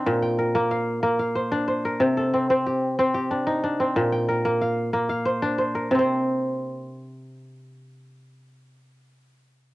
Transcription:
<<
  \new Staff \with { instrumentName = "Kora" } { \time 12/8 \key bes \major \tempo 4. = 123 <c' d'>8 g''8 bes'4 f''4. f''8 c''4 c''8 bes'8~ | bes'8 a'8 c'4 g'4. g'8 d'4 d'8 c'8~ | c'8 g''8 bes'4 f''4. f''8 c''4 c''8 bes'8~ | bes'8 r1 r4. |
r1. | }
  \new Staff \with { instrumentName = "Kora" } { \time 12/8 \key bes \major bes,4 r8 bes4 r8 bes4 r8 d'4 r8 | c4 r8 c'4 r8 c'4 r8 ees'4 r8 | bes,4 r8 bes4 r8 bes4 r8 d'4 r8 | <c c' c''>1.~ |
<c c' c''>1. | }
>>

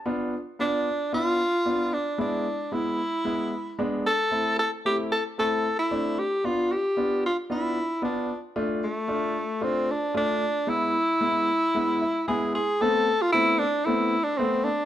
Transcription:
<<
  \new Staff \with { instrumentName = "Tenor saxophone" } { \time 4/4 \key a \minor \tempo 4 = 113 r4 d'4 f'4. d'8 | d'4 e'2 r8 a'8~ | a'8 a'8 g'8 a'8 a'8. e'8. g'8 | f'8 g'4 f'8 e'4 d'8. r16 |
r8 a4. c'8 d'8 d'4 | e'2. gis'8 gis'8 | a'8. f'16 e'8 d'8 e'8. d'16 c'8 d'8 | }
  \new Staff \with { instrumentName = "Grand piano" } { \time 4/4 \key a \minor <b d' f'>8 r8 <b d' f'>8 r8 <b d' f'>8 r8 <b d' f'>8 r8 | <gis b e'>8 r8 <gis b e'>8 r8 <gis b e'>8 r8 <gis b d'>8 r8 | <a c' e'>8 r8 <a c' e'>8 r8 <a c' e'>8 r8 <a c' d'>8 r8 | <b d' f'>8 r8 <b d' f'>8 r8 <b d' f'>8 r8 <b d' f'>8 r8 |
<a d' f'>8 r8 <a d' f'>8 r8 <a d' f'>8 r8 <a d' f'>8 r8 | <gis b e'>8 r8 <gis b e'>8 r8 <gis b e'>8 e''8 <gis b e' gis''>8 c'''8 | <a b c'>8 r8 <a b c'>8 r8 <a b c'>8 r8 <a b c'>8 r8 | }
>>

